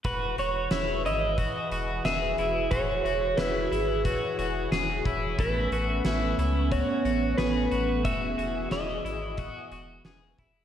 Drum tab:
HH |xxxxxxxx|xxxxxxxx|xxxxxxxx|xxxxxxxx|
SD |--o---o-|--o---o-|--o---o-|--o---o-|
BD |o---o---|o---o--o|o---o---|o---o--o|